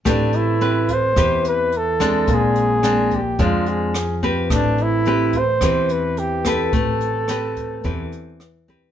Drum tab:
HH |xxxxxxxx|xxxxxxxx|xxxxxxxx|xxxxxxxx|
SD |r---r--r|--r---r-|r---r--r|--r---r-|
BD |o--oo--o|o--oo--o|o--oo--o|o--oo--o|